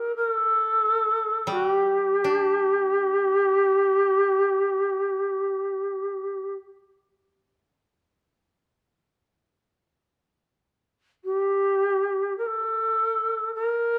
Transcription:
0.00 A#4
0.16 A#4
0.28 A4
1.47 G3
1.51 F#4
1.68 G4
2.24 D4
11.24 G4
12.38 A#4
12.46 A4
13.54 A#4

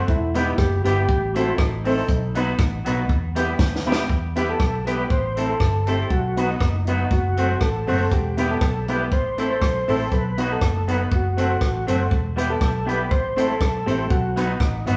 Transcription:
0.08 E1 E4, kick
0.34 G3 B3 D#4 E4 G4 B4, closed hi-hat
0.58 F#1 G4, kick, cross-stick
0.84 G1 G3 B3 E4 G4 B4, closed hi-hat
1.09 A1, kick
1.35 A3 C4 E4 F#4 A4 C5, closed hi-hat
1.58 A1 D#4, kick, cross-stick
1.84 A3 C4 E4 A4 C5, open hi-hat
2.08 B1, kick, hi-hat pedal
2.35 F#3 B3 D#4 F#4 B4, closed hi-hat
2.59 A1, kick, cross-stick
2.85 B1 F#3 B3 D#4 F#4 B4, closed hi-hat
3.09 E2, kick
3.35 G3 B3 E4 G4 B4, closed hi-hat
3.59 D#2, kick, snare
3.76 snare
3.86 G3 B3 E4 G4 B4
3.92 snare
4.09 E2, kick
4.36 G3 B3 E4 G4 B4, closed hi-hat
4.50 A4
4.60 B1, muted clean electric guitar stroke, kick, cross-stick
4.86 G3 B3 E4 G4 B4, closed hi-hat
5.10 A1 C5, kick
5.37 A3 C4 E4 A4 C5, closed hi-hat
5.50 A4
5.60 G1, kick, cross-stick
5.87 A3 C4 E4 G4 A4 C5, closed hi-hat
6.10 B1 F#4, kick
6.37 F#3 B3 D#4 F#4 B4, closed hi-hat
6.49 D#4
6.60 F#1, muted clean electric guitar stroke, kick, cross-stick
6.87 F#3 B3 D#4 F#4 B4, closed hi-hat
7.11 F#1 F#4, kick
7.37 F#3 A3 C4 F#4 A4 C5, closed hi-hat
7.61 A1 A4, kick, cross-stick
7.87 F#1 F#3 A3 C4 F#4 A4 C5, open hi-hat
8.11 E1 G4, kick, hi-hat pedal
8.37 G3 B3 E4 G4 B4, closed hi-hat
8.51 A4
8.61 B1, muted clean electric guitar stroke, kick, cross-stick
8.88 G3 B3 E4 G4 B4, closed hi-hat
9.12 A1 C5, kick
9.38 A3 C4 E4 A4 C5, closed hi-hat
9.51 C5
9.61 B1, kick, cross-stick
9.88 A1 A3 C4 E4 A4 C5, open hi-hat
10.12 B1 B4, kick, hi-hat pedal
10.37 F#3 B3 D#4 F#4 B4, closed hi-hat
10.52 A4
10.61 F#1, muted clean electric guitar stroke, kick, cross-stick
10.88 F#3 B3 D#4 F#4 B4, closed hi-hat
11.12 F#1 F#4, kick
11.37 F#3 A3 C4 F#4 A4 C5, closed hi-hat
11.61 A1, kick, cross-stick
11.87 F#1 F#3 A3 C4 F#4 A4 C5, closed hi-hat
12.11 E1, kick
12.36 G3 B3 E4 G4 B4, closed hi-hat
12.50 A4
12.60 B1, muted clean electric guitar stroke, kick, cross-stick
12.86 G3 B3 E4 G4 B4, closed hi-hat
13.11 A1 C5, kick
13.36 A3 C4 E4 A4 C5, closed hi-hat
13.48 A4
13.61 B1, kick, cross-stick
13.86 A1 A3 C4 E4 G4 A4 C5, closed hi-hat
14.10 B1 F#4, kick
14.36 F#3 B3 D#4 F#4 B4, closed hi-hat
14.48 D#4
14.60 A1, muted clean electric guitar stroke, kick, cross-stick
14.86 G1 F#3 B3 D#4 F#4 B4, closed hi-hat

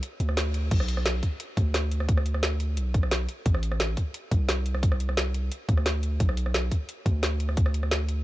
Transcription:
0.03 closed hi-hat
0.20 D2, closed hi-hat
0.29 cross-stick
0.37 snare, closed hi-hat
0.54 closed hi-hat
0.71 B1, kick, closed hi-hat, crash
0.80 cross-stick
0.88 closed hi-hat
0.97 cross-stick
1.06 snare, closed hi-hat
1.23 kick, closed hi-hat
1.40 closed hi-hat
1.57 D2, kick, closed hi-hat
1.74 snare, closed hi-hat
1.92 closed hi-hat
2.00 cross-stick
2.09 kick, closed hi-hat
2.17 cross-stick
2.26 closed hi-hat
2.34 cross-stick
2.43 snare, closed hi-hat
2.60 closed hi-hat
2.77 B1, closed hi-hat
2.94 kick, closed hi-hat
3.03 cross-stick
3.11 snare, closed hi-hat
3.29 closed hi-hat
3.46 A1, kick, closed hi-hat
3.54 cross-stick
3.63 closed hi-hat
3.72 cross-stick
3.80 snare, closed hi-hat
3.97 kick, closed hi-hat
4.14 closed hi-hat
4.31 C2, kick, closed hi-hat
4.49 snare, closed hi-hat
4.66 closed hi-hat
4.75 cross-stick
4.83 kick, closed hi-hat
4.92 cross-stick
5.00 closed hi-hat
5.09 cross-stick
5.17 snare, closed hi-hat
5.34 closed hi-hat
5.52 closed hi-hat
5.69 D2, kick, closed hi-hat
5.77 cross-stick
5.86 snare, closed hi-hat
6.03 closed hi-hat
6.20 B1, kick, closed hi-hat
6.29 cross-stick
6.37 closed hi-hat
6.46 cross-stick
6.54 snare, closed hi-hat
6.71 kick, closed hi-hat
6.89 closed hi-hat
7.06 D2, kick, closed hi-hat
7.23 snare, closed hi-hat
7.40 closed hi-hat
7.49 cross-stick
7.57 kick, closed hi-hat
7.66 cross-stick
7.74 closed hi-hat
7.83 cross-stick
7.91 snare, closed hi-hat
8.09 closed hi-hat

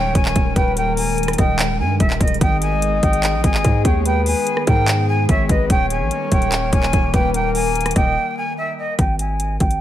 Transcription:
Already playing: D#1 D#3 G3 G#3 A#4 C#5 G5
0.15 D#1 G#5, kick, closed hi-hat
0.25 clap
0.36 D#1, kick, closed hi-hat
0.56 D#1 B4 G5, kick, closed hi-hat
0.77 A#4 G5, closed hi-hat
0.97 G#5, open hi-hat
1.18 closed hi-hat
1.23 closed hi-hat
1.28 cross-stick, closed hi-hat
1.33 closed hi-hat
1.38 D#1 D#5 G5, kick, cross-stick, closed hi-hat
1.59 clap, closed hi-hat
1.79 G2 G#5
2.00 D#1 E5, kick, closed hi-hat
2.10 clap
2.21 D#1 D#5, kick, closed hi-hat
2.28 closed hi-hat
2.34 closed hi-hat
2.41 G#1 B3 G#4 D#5 G5, kick, closed hi-hat
2.62 G#5, closed hi-hat
2.82 closed hi-hat
3.02 G#1 G5, kick, closed hi-hat
3.13 closed hi-hat
3.23 clap, closed hi-hat
3.34 A#1
3.44 G#1 G#5, kick, closed hi-hat
3.54 clap
3.64 G#2, kick, closed hi-hat
3.85 D#2 C#5 G5, kick, closed hi-hat
4.06 B4 G5, closed hi-hat
4.26 G#5, open hi-hat
4.47 closed hi-hat
4.57 cross-stick
4.67 G#2 A#4 G5, kick, closed hi-hat
4.88 clap, closed hi-hat
5.08 G#5
5.29 G#1 C#5 E5, kick, closed hi-hat
5.49 G#1 B4 D#5, kick, closed hi-hat
5.70 D#1 D#3 G3 A#3 A#4 C#5 G5, kick, closed hi-hat
5.90 G#5, closed hi-hat
6.01 A#1
6.11 closed hi-hat
6.32 D#1 G5, kick, closed hi-hat
6.42 closed hi-hat
6.52 clap, closed hi-hat
6.73 D#1 G#5, kick, closed hi-hat
6.83 clap
6.93 D#1, kick, closed hi-hat
7.14 D#1 B4 G5, kick, closed hi-hat
7.34 A#4 G5, closed hi-hat
7.55 G#5, open hi-hat
7.75 closed hi-hat
7.81 closed hi-hat
7.86 cross-stick, closed hi-hat
7.91 closed hi-hat
7.96 D#1 D#5 G5, kick, cross-stick, closed hi-hat
8.37 G#5
8.57 E5
8.78 D#5
8.99 G#1 G5, kick, closed hi-hat
9.19 G#5, closed hi-hat
9.40 closed hi-hat
9.59 G#1 G5, kick, closed hi-hat
9.71 closed hi-hat

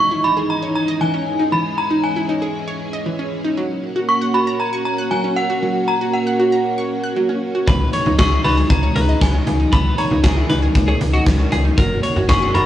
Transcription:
Already playing: E3 G#3 C#4 D#4 G#4
0.00 C#6
0.11 E4
0.24 D#4 B5
0.37 G#4
0.50 A#5
0.63 C#5
0.75 A#5
0.88 D#5
1.01 E3 G#5
1.14 C#4
1.39 D#4
1.52 E3 E4 B5
1.78 A#5
1.91 D#4
2.04 G#5
2.16 E4
2.29 D#4
2.42 G#4
2.68 C#5
2.93 D#5
3.06 E3
3.19 C#4
3.45 D#4
3.57 F#3 A#3 F#4
3.96 F#4
4.09 C#6
4.21 F#5
4.34 F#4 B5
4.47 A#5
4.60 A#5
4.73 C#6
4.85 A#5
4.98 F#6
5.11 F#3 G#5
5.24 C#4
5.36 F#5
5.50 F#4
5.63 F#3
5.88 A#5
6.01 F#4
6.13 F#5
6.27 F#5
6.40 F#4
6.52 A#5
6.78 C#6
7.04 F#6
7.16 F#3
7.29 C#4
7.55 F#4
7.67 C#2 E3 G#3 D#4 G#4 B4, kick, closed hi-hat
7.93 C#5, closed hi-hat
8.06 C#2 D#4
8.19 C#2 G#4 C#6, kick, snare, closed hi-hat
8.32 E4
8.44 C#2 D#4 B4 B5, open hi-hat
8.57 G#4
8.70 C#2 A#5, kick, closed hi-hat
8.83 C#5
8.96 C#2 B4, closed hi-hat
9.09 D#5
9.21 C#2 E3 G#5, kick, snare, closed hi-hat
9.34 C#4
9.47 C#2, closed hi-hat
9.60 D#4
9.73 C#2 E3 A#4 B4 B5, kick, closed hi-hat
9.98 C#5 A#5, closed hi-hat
10.11 C#2 D#4
10.24 C#2 G#4 G#5, kick, snare, closed hi-hat
10.37 E4
10.49 C#2 D#4 B4, closed hi-hat
10.62 G#4
10.75 C#2, kick, closed hi-hat
10.88 G#4 C#5
11.01 C#2, closed hi-hat
11.14 F#4 D#5
11.26 C#2 E3, kick, snare, closed hi-hat
11.39 C#4
11.52 C#2 G#4, closed hi-hat
11.65 D#4
11.78 F#1 F#3 A#3 C#4 F#4 A#4, kick, closed hi-hat
12.03 C#5, closed hi-hat
12.16 F#1 F#4
12.29 F#1 G#4 C#6, kick, snare, closed hi-hat
12.42 F#5
12.54 F#1 F#4 A#4 B5, closed hi-hat

